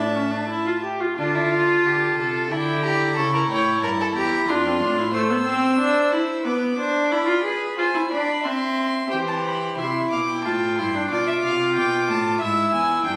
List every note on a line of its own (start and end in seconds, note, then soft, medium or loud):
0.00 0.84 A2 medium
0.00 0.17 D4 medium
0.00 0.81 E5 medium
0.00 0.80 A5 medium
0.15 0.33 C#4 medium
0.31 0.48 D4 medium
0.49 0.66 E4 medium
0.67 0.73 F4 medium
0.83 1.02 G4 medium
1.00 1.17 F4 medium
1.18 1.81 D3 medium
1.18 1.37 D4 medium
1.18 2.47 F4 medium
1.18 2.47 A5 medium
1.35 1.53 E4 medium
1.51 1.88 F4 medium
1.85 2.17 D3 medium
1.85 2.18 G4 medium
2.17 2.50 C3 medium
2.17 2.53 A4 medium
2.50 3.18 D3 medium
2.50 4.51 E4 medium
2.50 2.84 E4 medium
2.50 2.85 G5 medium
2.83 3.16 G4 loud
2.83 3.18 A#5 medium
3.16 3.48 C#3 medium
3.16 3.33 A4 medium
3.16 3.50 C#6 medium
3.35 3.41 A#4 medium
3.49 3.81 A2 medium
3.49 3.82 C#5 loud
3.49 3.81 G5 medium
3.81 4.14 G2 medium
3.81 3.90 A#4 medium
3.81 4.14 A5 medium
4.01 4.07 A4 loud
4.15 4.47 E2 medium
4.15 4.48 G4 loud
4.15 4.50 A#5 medium
4.48 4.82 F2 medium
4.48 4.67 D4 medium
4.48 5.13 F4 loud
4.48 5.16 C6 medium
4.66 4.81 C4 medium
4.81 5.14 A2 medium
4.81 4.97 D4 medium
4.98 5.04 E4 medium
5.13 5.32 A3 loud
5.13 6.42 C5 medium
5.13 6.45 E6 loud
5.30 5.45 B3 medium
5.46 5.79 C4 loud
5.79 6.13 D4 loud
6.12 6.46 E4 medium
6.45 6.77 B3 medium
6.45 6.77 B4 medium
6.45 7.13 D6 medium
6.78 7.13 D4 loud
6.78 7.11 C5 medium
7.11 7.26 E4 loud
7.11 7.47 D5 medium
7.11 7.78 B5 medium
7.27 7.43 F4 medium
7.44 7.77 G#4 medium
7.44 7.77 B4 medium
7.78 7.84 F4 loud
7.78 8.10 C5 medium
7.78 8.11 G#5 medium
7.94 8.01 E4 medium
8.11 8.46 D4 medium
8.11 8.42 D5 medium
8.11 8.45 B5 medium
8.43 9.10 C4 medium
8.43 9.10 E5 medium
8.43 9.11 C6 medium
9.11 9.75 E3 medium
9.11 9.80 G4 medium
9.11 9.74 C5 medium
9.11 9.18 G5 medium
9.28 9.35 A5 medium
9.45 9.78 B5 medium
9.78 10.11 C3 medium
9.78 10.47 E4 medium
9.78 10.11 E5 medium
9.78 10.10 C6 medium
10.11 10.47 B2 medium
10.11 10.19 F5 medium
10.11 10.44 D6 medium
10.28 11.09 G5 medium
10.44 10.81 A2 medium
10.44 10.80 F4 medium
10.44 10.77 A5 medium
10.78 11.11 G2 medium
10.78 10.96 E4 medium
10.78 11.10 C6 medium
10.95 11.14 D4 medium
11.11 11.43 B2 medium
11.11 12.42 F4 medium
11.11 11.27 D5 medium
11.11 11.75 D6 medium
11.27 11.34 E5 medium
11.43 11.78 C3 medium
11.43 11.75 F5 medium
11.76 12.10 B2 medium
11.76 12.08 G5 medium
11.76 12.39 D6 medium
12.09 12.40 A2 medium
12.09 12.40 A5 medium
12.41 12.73 G#2 medium
12.41 13.06 E4 medium
12.41 12.72 E5 medium
12.41 13.04 E6 medium
12.73 13.05 E2 medium
12.73 13.04 G#5 medium
13.05 13.16 G2 medium
13.05 13.16 D4 medium
13.05 13.16 G5 medium